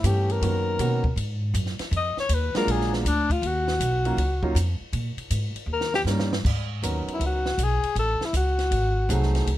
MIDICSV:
0, 0, Header, 1, 6, 480
1, 0, Start_track
1, 0, Key_signature, -6, "minor"
1, 0, Tempo, 377121
1, 526, Time_signature, 4, 2, 24, 8
1, 8201, Key_signature, 5, "minor"
1, 12192, End_track
2, 0, Start_track
2, 0, Title_t, "Alto saxophone"
2, 0, Program_c, 0, 65
2, 77, Note_on_c, 0, 67, 78
2, 403, Note_on_c, 0, 70, 97
2, 422, Note_off_c, 0, 67, 0
2, 1501, Note_off_c, 0, 70, 0
2, 2503, Note_on_c, 0, 75, 89
2, 2770, Note_off_c, 0, 75, 0
2, 2797, Note_on_c, 0, 73, 93
2, 2980, Note_on_c, 0, 71, 81
2, 2999, Note_off_c, 0, 73, 0
2, 3265, Note_off_c, 0, 71, 0
2, 3273, Note_on_c, 0, 70, 97
2, 3459, Note_on_c, 0, 68, 83
2, 3478, Note_off_c, 0, 70, 0
2, 3747, Note_off_c, 0, 68, 0
2, 3758, Note_on_c, 0, 59, 54
2, 3907, Note_on_c, 0, 62, 91
2, 3926, Note_off_c, 0, 59, 0
2, 4227, Note_on_c, 0, 65, 86
2, 4246, Note_off_c, 0, 62, 0
2, 4409, Note_on_c, 0, 66, 85
2, 4428, Note_off_c, 0, 65, 0
2, 5823, Note_off_c, 0, 66, 0
2, 7293, Note_on_c, 0, 70, 86
2, 7565, Note_off_c, 0, 70, 0
2, 7575, Note_on_c, 0, 67, 99
2, 7667, Note_off_c, 0, 67, 0
2, 9081, Note_on_c, 0, 64, 69
2, 9194, Note_off_c, 0, 64, 0
2, 9243, Note_on_c, 0, 66, 87
2, 9716, Note_on_c, 0, 68, 105
2, 9735, Note_off_c, 0, 66, 0
2, 10161, Note_off_c, 0, 68, 0
2, 10170, Note_on_c, 0, 69, 102
2, 10500, Note_on_c, 0, 64, 89
2, 10519, Note_off_c, 0, 69, 0
2, 10634, Note_off_c, 0, 64, 0
2, 10647, Note_on_c, 0, 66, 86
2, 11859, Note_off_c, 0, 66, 0
2, 12192, End_track
3, 0, Start_track
3, 0, Title_t, "Grand piano"
3, 0, Program_c, 1, 0
3, 49, Note_on_c, 1, 57, 49
3, 52, Note_on_c, 1, 59, 50
3, 55, Note_on_c, 1, 52, 53
3, 58, Note_on_c, 1, 61, 50
3, 66, Note_on_c, 1, 67, 63
3, 523, Note_off_c, 1, 61, 0
3, 525, Note_off_c, 1, 59, 0
3, 527, Note_off_c, 1, 57, 0
3, 529, Note_off_c, 1, 52, 0
3, 535, Note_off_c, 1, 67, 0
3, 536, Note_on_c, 1, 58, 57
3, 540, Note_on_c, 1, 51, 60
3, 542, Note_on_c, 1, 61, 51
3, 544, Note_on_c, 1, 59, 57
3, 544, Note_on_c, 1, 66, 65
3, 989, Note_off_c, 1, 51, 0
3, 991, Note_off_c, 1, 58, 0
3, 996, Note_off_c, 1, 61, 0
3, 997, Note_off_c, 1, 59, 0
3, 997, Note_off_c, 1, 66, 0
3, 1008, Note_on_c, 1, 51, 61
3, 1010, Note_on_c, 1, 58, 61
3, 1018, Note_on_c, 1, 59, 57
3, 1018, Note_on_c, 1, 61, 59
3, 1022, Note_on_c, 1, 66, 62
3, 1292, Note_off_c, 1, 51, 0
3, 1293, Note_off_c, 1, 58, 0
3, 1297, Note_off_c, 1, 59, 0
3, 1297, Note_off_c, 1, 61, 0
3, 1299, Note_off_c, 1, 66, 0
3, 3248, Note_on_c, 1, 54, 81
3, 3250, Note_on_c, 1, 56, 73
3, 3257, Note_on_c, 1, 58, 63
3, 3259, Note_on_c, 1, 62, 68
3, 3268, Note_on_c, 1, 65, 92
3, 3851, Note_off_c, 1, 54, 0
3, 3852, Note_off_c, 1, 56, 0
3, 3855, Note_off_c, 1, 58, 0
3, 3856, Note_off_c, 1, 62, 0
3, 3861, Note_off_c, 1, 65, 0
3, 5156, Note_on_c, 1, 54, 69
3, 5163, Note_on_c, 1, 63, 60
3, 5164, Note_on_c, 1, 58, 64
3, 5165, Note_on_c, 1, 61, 57
3, 5168, Note_on_c, 1, 65, 70
3, 5301, Note_off_c, 1, 54, 0
3, 5304, Note_off_c, 1, 63, 0
3, 5305, Note_off_c, 1, 58, 0
3, 5305, Note_off_c, 1, 61, 0
3, 5307, Note_off_c, 1, 65, 0
3, 5630, Note_on_c, 1, 54, 71
3, 5637, Note_on_c, 1, 61, 65
3, 5637, Note_on_c, 1, 63, 70
3, 5639, Note_on_c, 1, 58, 62
3, 5641, Note_on_c, 1, 65, 82
3, 5778, Note_off_c, 1, 54, 0
3, 5781, Note_off_c, 1, 61, 0
3, 5782, Note_off_c, 1, 58, 0
3, 5782, Note_off_c, 1, 63, 0
3, 5783, Note_off_c, 1, 65, 0
3, 7713, Note_on_c, 1, 55, 73
3, 7724, Note_on_c, 1, 58, 67
3, 7724, Note_on_c, 1, 61, 70
3, 7733, Note_on_c, 1, 70, 79
3, 7734, Note_on_c, 1, 63, 66
3, 8004, Note_off_c, 1, 55, 0
3, 8009, Note_off_c, 1, 58, 0
3, 8009, Note_off_c, 1, 61, 0
3, 8014, Note_off_c, 1, 63, 0
3, 8014, Note_off_c, 1, 70, 0
3, 8688, Note_on_c, 1, 59, 47
3, 8690, Note_on_c, 1, 54, 53
3, 8694, Note_on_c, 1, 61, 47
3, 8695, Note_on_c, 1, 63, 43
3, 8702, Note_on_c, 1, 70, 59
3, 9422, Note_off_c, 1, 59, 0
3, 9423, Note_off_c, 1, 54, 0
3, 9425, Note_off_c, 1, 61, 0
3, 9425, Note_off_c, 1, 63, 0
3, 9429, Note_off_c, 1, 70, 0
3, 11570, Note_on_c, 1, 54, 69
3, 11570, Note_on_c, 1, 57, 60
3, 11570, Note_on_c, 1, 60, 59
3, 11577, Note_on_c, 1, 63, 60
3, 11583, Note_on_c, 1, 68, 74
3, 12051, Note_off_c, 1, 54, 0
3, 12051, Note_off_c, 1, 57, 0
3, 12051, Note_off_c, 1, 60, 0
3, 12055, Note_off_c, 1, 63, 0
3, 12057, Note_off_c, 1, 68, 0
3, 12192, End_track
4, 0, Start_track
4, 0, Title_t, "Upright bass"
4, 0, Program_c, 2, 32
4, 42, Note_on_c, 2, 43, 85
4, 508, Note_off_c, 2, 43, 0
4, 527, Note_on_c, 2, 42, 79
4, 990, Note_off_c, 2, 42, 0
4, 1004, Note_on_c, 2, 47, 81
4, 1468, Note_off_c, 2, 47, 0
4, 1476, Note_on_c, 2, 44, 86
4, 1944, Note_off_c, 2, 44, 0
4, 1957, Note_on_c, 2, 42, 92
4, 2255, Note_off_c, 2, 42, 0
4, 2435, Note_on_c, 2, 41, 93
4, 2733, Note_off_c, 2, 41, 0
4, 2915, Note_on_c, 2, 39, 91
4, 3213, Note_off_c, 2, 39, 0
4, 3395, Note_on_c, 2, 34, 73
4, 3861, Note_off_c, 2, 34, 0
4, 3881, Note_on_c, 2, 38, 91
4, 4345, Note_off_c, 2, 38, 0
4, 4353, Note_on_c, 2, 39, 88
4, 4821, Note_off_c, 2, 39, 0
4, 4837, Note_on_c, 2, 35, 84
4, 5299, Note_off_c, 2, 35, 0
4, 5307, Note_on_c, 2, 37, 80
4, 5777, Note_off_c, 2, 37, 0
4, 5789, Note_on_c, 2, 41, 94
4, 6090, Note_off_c, 2, 41, 0
4, 6271, Note_on_c, 2, 46, 86
4, 6571, Note_off_c, 2, 46, 0
4, 6752, Note_on_c, 2, 44, 87
4, 7052, Note_off_c, 2, 44, 0
4, 7206, Note_on_c, 2, 39, 82
4, 7688, Note_off_c, 2, 39, 0
4, 7694, Note_on_c, 2, 43, 90
4, 8173, Note_off_c, 2, 43, 0
4, 8201, Note_on_c, 2, 44, 84
4, 8667, Note_off_c, 2, 44, 0
4, 8685, Note_on_c, 2, 39, 83
4, 8981, Note_off_c, 2, 39, 0
4, 9158, Note_on_c, 2, 37, 79
4, 9627, Note_off_c, 2, 37, 0
4, 9645, Note_on_c, 2, 35, 82
4, 9942, Note_off_c, 2, 35, 0
4, 10122, Note_on_c, 2, 33, 83
4, 10421, Note_off_c, 2, 33, 0
4, 10602, Note_on_c, 2, 37, 84
4, 11071, Note_off_c, 2, 37, 0
4, 11085, Note_on_c, 2, 32, 82
4, 11553, Note_off_c, 2, 32, 0
4, 11567, Note_on_c, 2, 36, 93
4, 12035, Note_off_c, 2, 36, 0
4, 12049, Note_on_c, 2, 37, 82
4, 12192, Note_off_c, 2, 37, 0
4, 12192, End_track
5, 0, Start_track
5, 0, Title_t, "Muted upright bass strokes"
5, 2283, Note_on_c, 9, 29, 41
5, 2411, Note_off_c, 9, 29, 0
5, 2764, Note_on_c, 9, 29, 34
5, 2891, Note_off_c, 9, 29, 0
5, 3250, Note_on_c, 9, 29, 42
5, 3378, Note_off_c, 9, 29, 0
5, 6116, Note_on_c, 9, 29, 44
5, 6243, Note_off_c, 9, 29, 0
5, 6577, Note_on_c, 9, 29, 35
5, 6704, Note_off_c, 9, 29, 0
5, 7058, Note_on_c, 9, 29, 44
5, 7185, Note_off_c, 9, 29, 0
5, 8998, Note_on_c, 9, 29, 38
5, 9125, Note_off_c, 9, 29, 0
5, 9971, Note_on_c, 9, 29, 42
5, 10098, Note_off_c, 9, 29, 0
5, 10444, Note_on_c, 9, 29, 37
5, 10571, Note_off_c, 9, 29, 0
5, 12192, End_track
6, 0, Start_track
6, 0, Title_t, "Drums"
6, 46, Note_on_c, 9, 36, 23
6, 51, Note_on_c, 9, 44, 55
6, 51, Note_on_c, 9, 51, 71
6, 174, Note_off_c, 9, 36, 0
6, 178, Note_off_c, 9, 44, 0
6, 178, Note_off_c, 9, 51, 0
6, 376, Note_on_c, 9, 51, 43
6, 504, Note_off_c, 9, 51, 0
6, 530, Note_on_c, 9, 36, 20
6, 540, Note_on_c, 9, 51, 66
6, 658, Note_off_c, 9, 36, 0
6, 667, Note_off_c, 9, 51, 0
6, 1005, Note_on_c, 9, 36, 18
6, 1007, Note_on_c, 9, 44, 50
6, 1007, Note_on_c, 9, 51, 65
6, 1132, Note_off_c, 9, 36, 0
6, 1134, Note_off_c, 9, 44, 0
6, 1134, Note_off_c, 9, 51, 0
6, 1322, Note_on_c, 9, 36, 55
6, 1450, Note_off_c, 9, 36, 0
6, 1484, Note_on_c, 9, 36, 19
6, 1493, Note_on_c, 9, 51, 62
6, 1611, Note_off_c, 9, 36, 0
6, 1620, Note_off_c, 9, 51, 0
6, 1962, Note_on_c, 9, 36, 22
6, 1966, Note_on_c, 9, 44, 66
6, 1966, Note_on_c, 9, 51, 65
6, 2089, Note_off_c, 9, 36, 0
6, 2093, Note_off_c, 9, 44, 0
6, 2093, Note_off_c, 9, 51, 0
6, 2116, Note_on_c, 9, 38, 30
6, 2243, Note_off_c, 9, 38, 0
6, 2280, Note_on_c, 9, 51, 49
6, 2287, Note_on_c, 9, 38, 44
6, 2408, Note_off_c, 9, 51, 0
6, 2415, Note_off_c, 9, 38, 0
6, 2441, Note_on_c, 9, 36, 23
6, 2451, Note_on_c, 9, 51, 60
6, 2569, Note_off_c, 9, 36, 0
6, 2578, Note_off_c, 9, 51, 0
6, 2766, Note_on_c, 9, 38, 38
6, 2893, Note_off_c, 9, 38, 0
6, 2918, Note_on_c, 9, 44, 62
6, 2918, Note_on_c, 9, 51, 73
6, 2919, Note_on_c, 9, 36, 20
6, 3045, Note_off_c, 9, 44, 0
6, 3045, Note_off_c, 9, 51, 0
6, 3046, Note_off_c, 9, 36, 0
6, 3243, Note_on_c, 9, 38, 62
6, 3243, Note_on_c, 9, 51, 43
6, 3370, Note_off_c, 9, 38, 0
6, 3370, Note_off_c, 9, 51, 0
6, 3401, Note_on_c, 9, 36, 22
6, 3411, Note_on_c, 9, 51, 71
6, 3529, Note_off_c, 9, 36, 0
6, 3538, Note_off_c, 9, 51, 0
6, 3577, Note_on_c, 9, 38, 30
6, 3704, Note_off_c, 9, 38, 0
6, 3731, Note_on_c, 9, 38, 49
6, 3858, Note_off_c, 9, 38, 0
6, 3881, Note_on_c, 9, 36, 21
6, 3893, Note_on_c, 9, 44, 58
6, 3893, Note_on_c, 9, 51, 74
6, 4008, Note_off_c, 9, 36, 0
6, 4020, Note_off_c, 9, 44, 0
6, 4020, Note_off_c, 9, 51, 0
6, 4199, Note_on_c, 9, 36, 47
6, 4207, Note_on_c, 9, 51, 51
6, 4326, Note_off_c, 9, 36, 0
6, 4334, Note_off_c, 9, 51, 0
6, 4359, Note_on_c, 9, 36, 26
6, 4364, Note_on_c, 9, 51, 59
6, 4486, Note_off_c, 9, 36, 0
6, 4491, Note_off_c, 9, 51, 0
6, 4680, Note_on_c, 9, 38, 51
6, 4807, Note_off_c, 9, 38, 0
6, 4835, Note_on_c, 9, 36, 22
6, 4843, Note_on_c, 9, 44, 57
6, 4843, Note_on_c, 9, 51, 76
6, 4963, Note_off_c, 9, 36, 0
6, 4970, Note_off_c, 9, 44, 0
6, 4970, Note_off_c, 9, 51, 0
6, 5155, Note_on_c, 9, 51, 47
6, 5283, Note_off_c, 9, 51, 0
6, 5316, Note_on_c, 9, 36, 23
6, 5322, Note_on_c, 9, 51, 63
6, 5443, Note_off_c, 9, 36, 0
6, 5449, Note_off_c, 9, 51, 0
6, 5634, Note_on_c, 9, 36, 50
6, 5762, Note_off_c, 9, 36, 0
6, 5795, Note_on_c, 9, 36, 20
6, 5804, Note_on_c, 9, 44, 66
6, 5804, Note_on_c, 9, 51, 66
6, 5923, Note_off_c, 9, 36, 0
6, 5931, Note_off_c, 9, 44, 0
6, 5931, Note_off_c, 9, 51, 0
6, 6272, Note_on_c, 9, 36, 21
6, 6275, Note_on_c, 9, 51, 65
6, 6400, Note_off_c, 9, 36, 0
6, 6402, Note_off_c, 9, 51, 0
6, 6592, Note_on_c, 9, 51, 47
6, 6719, Note_off_c, 9, 51, 0
6, 6752, Note_on_c, 9, 44, 61
6, 6752, Note_on_c, 9, 51, 78
6, 6753, Note_on_c, 9, 36, 22
6, 6879, Note_off_c, 9, 44, 0
6, 6879, Note_off_c, 9, 51, 0
6, 6880, Note_off_c, 9, 36, 0
6, 7073, Note_on_c, 9, 51, 44
6, 7200, Note_off_c, 9, 51, 0
6, 7394, Note_on_c, 9, 38, 54
6, 7521, Note_off_c, 9, 38, 0
6, 7560, Note_on_c, 9, 38, 75
6, 7688, Note_off_c, 9, 38, 0
6, 7723, Note_on_c, 9, 38, 68
6, 7723, Note_on_c, 9, 44, 67
6, 7850, Note_off_c, 9, 38, 0
6, 7850, Note_off_c, 9, 44, 0
6, 7886, Note_on_c, 9, 38, 73
6, 8014, Note_off_c, 9, 38, 0
6, 8055, Note_on_c, 9, 38, 90
6, 8182, Note_off_c, 9, 38, 0
6, 8208, Note_on_c, 9, 36, 66
6, 8220, Note_on_c, 9, 49, 64
6, 8335, Note_off_c, 9, 36, 0
6, 8347, Note_off_c, 9, 49, 0
6, 8688, Note_on_c, 9, 36, 18
6, 8697, Note_on_c, 9, 44, 59
6, 8697, Note_on_c, 9, 51, 71
6, 8815, Note_off_c, 9, 36, 0
6, 8825, Note_off_c, 9, 44, 0
6, 8825, Note_off_c, 9, 51, 0
6, 9016, Note_on_c, 9, 51, 45
6, 9143, Note_off_c, 9, 51, 0
6, 9166, Note_on_c, 9, 36, 19
6, 9172, Note_on_c, 9, 51, 67
6, 9293, Note_off_c, 9, 36, 0
6, 9300, Note_off_c, 9, 51, 0
6, 9491, Note_on_c, 9, 38, 55
6, 9618, Note_off_c, 9, 38, 0
6, 9645, Note_on_c, 9, 36, 25
6, 9654, Note_on_c, 9, 44, 64
6, 9654, Note_on_c, 9, 51, 67
6, 9772, Note_off_c, 9, 36, 0
6, 9781, Note_off_c, 9, 44, 0
6, 9781, Note_off_c, 9, 51, 0
6, 9971, Note_on_c, 9, 51, 47
6, 10099, Note_off_c, 9, 51, 0
6, 10127, Note_on_c, 9, 36, 21
6, 10132, Note_on_c, 9, 51, 58
6, 10255, Note_off_c, 9, 36, 0
6, 10260, Note_off_c, 9, 51, 0
6, 10451, Note_on_c, 9, 38, 47
6, 10579, Note_off_c, 9, 38, 0
6, 10608, Note_on_c, 9, 36, 19
6, 10611, Note_on_c, 9, 44, 60
6, 10611, Note_on_c, 9, 51, 72
6, 10735, Note_off_c, 9, 36, 0
6, 10738, Note_off_c, 9, 44, 0
6, 10738, Note_off_c, 9, 51, 0
6, 10928, Note_on_c, 9, 38, 35
6, 10928, Note_on_c, 9, 51, 42
6, 11056, Note_off_c, 9, 38, 0
6, 11056, Note_off_c, 9, 51, 0
6, 11086, Note_on_c, 9, 36, 17
6, 11092, Note_on_c, 9, 51, 62
6, 11214, Note_off_c, 9, 36, 0
6, 11220, Note_off_c, 9, 51, 0
6, 11569, Note_on_c, 9, 36, 18
6, 11578, Note_on_c, 9, 44, 60
6, 11578, Note_on_c, 9, 51, 65
6, 11696, Note_off_c, 9, 36, 0
6, 11705, Note_off_c, 9, 44, 0
6, 11705, Note_off_c, 9, 51, 0
6, 11741, Note_on_c, 9, 38, 29
6, 11868, Note_off_c, 9, 38, 0
6, 11897, Note_on_c, 9, 51, 48
6, 11903, Note_on_c, 9, 38, 44
6, 12024, Note_off_c, 9, 51, 0
6, 12031, Note_off_c, 9, 38, 0
6, 12051, Note_on_c, 9, 36, 20
6, 12056, Note_on_c, 9, 51, 61
6, 12179, Note_off_c, 9, 36, 0
6, 12184, Note_off_c, 9, 51, 0
6, 12192, End_track
0, 0, End_of_file